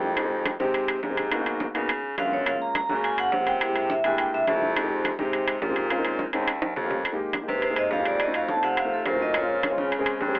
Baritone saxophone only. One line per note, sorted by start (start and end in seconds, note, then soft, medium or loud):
0.00 0.54 F2 medium
0.60 1.00 C3 medium
1.03 1.69 G#2 medium
1.75 2.15 C#3 medium
2.18 2.58 F#2 medium
2.89 3.30 C#3 medium
3.33 3.99 C3 medium
4.04 4.31 G2 medium
4.33 4.46 G2 medium
4.48 5.14 F2 loud
5.19 5.59 C3 medium
5.62 6.28 A#2 loud
6.33 6.60 D#2 medium
6.62 6.76 D#2 medium
6.76 7.17 F2 medium
7.48 7.88 C3 medium
7.91 8.58 F2 medium
8.63 9.03 C3 medium
9.06 9.73 A#2 medium
9.78 10.18 C#3 medium
10.21 10.39 G2 medium